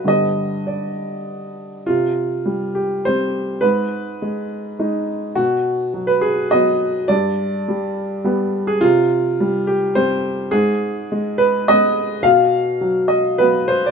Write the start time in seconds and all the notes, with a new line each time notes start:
0.04 G2 D3 G3 B3 D#5
0.67 D5
1.86 C3 F4
2.46 G3
2.75 G4
3.05 G3 C4 C5
3.61 G#2 B4
4.22 G#3
4.79 G#3 D#4
5.35 B2 F#4
5.94 F#3
6.07 B4
6.21 G#4
6.51 F#3 B3 D#5
7.08 G2 D5
7.68 G3
8.24 G3 B3
8.67 G#4
8.81 C3 F4
9.40 G3
9.67 G4
9.95 G3 C4 C5
10.51 G#2 G#4
11.12 G#3
11.38 B4
11.68 G#3 B3 D#5
12.23 B2 F5
12.81 F#3
13.08 D#5
13.38 F#3 B3 B4
13.68 C5
13.86 D5